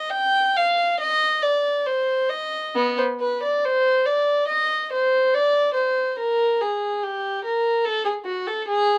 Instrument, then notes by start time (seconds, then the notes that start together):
violin
0.10 G5
0.56 F5
1.00 D#5
1.42 D5
1.86 C5
2.29 D#5
2.75 B3
2.98 C5
3.20 B4
3.43 D5
3.65 C5
4.06 D5
4.48 D#5
4.92 C5
5.34 D5
5.74 C5
6.19 A#4
6.61 G#4
7.03 G4
7.44 A#4
7.85 A4
8.05 G#4
8.25 F#4
8.47 A4
8.68 G#4